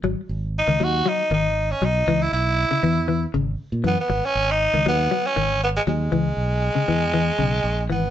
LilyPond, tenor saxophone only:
\new Staff \with { instrumentName = "Tenor saxophone" } { \time 4/4 \key gis \minor \tempo 4 = 118 r4 dis'8 fis'8 dis'8 dis'8. cis'16 dis'8~ | dis'16 e'16 e'2 r4 b16 b16~ | b16 cis'8 dis'8. b8. cis'8. b16 gis16 gis8~ | gis2.~ gis8 b8 | }